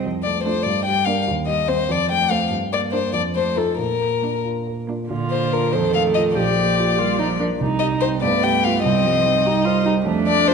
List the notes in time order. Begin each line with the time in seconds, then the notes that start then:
0.05 F2
0.23 A3 D5
0.44 A3 D4 F4 A4 C5
0.63 G2 D5
0.85 G3 G5
1.05 A#3 D4 A#4 F5
1.28 D#2
1.47 G3 D#5
1.68 G3 C4 C5
1.89 F2 D5
2.10 A3 G5
2.30 A3 C4 C5 F5
2.50 G2
2.73 A#3 D5
2.92 A#3 D4 A#4 C5
3.13 F2 D5
3.35 A3 C5
3.56 A3 D#4 F4 A4
3.78 A#2 A#4
4.00 A#3
4.22 A#3 D4
4.44 F4
4.67 A#4
4.87 A#3 D4 F4
5.09 A#2 D3 F4
5.31 A#3 C5
5.53 D4 F4 A#4
5.72 F2 D#3 A4 C5
5.94 A3 F5
6.14 D#4 F4 D#5
6.35 A#1 F3 G4 D5
6.58 A#3
6.78 F4
6.98 G3 F4 A#4
7.19 F3 D#4 D5
7.40 F3 D4 A#4
7.60 C2 G3 D#4
7.79 G3 D#5
8.01 C4 D#4 C5
8.22 G2 A3 B3 D5
8.44 G3 G5
8.64 B3 F4 F5
8.82 C2 G3 C4 D#5
9.04 F3 G3
9.24 G3 D#4
9.46 D#4 G4
9.65 F4 C5
9.86 D#4 G4
10.06 F2 A3 D4
10.28 A3 D5
10.48 D4 F4 C5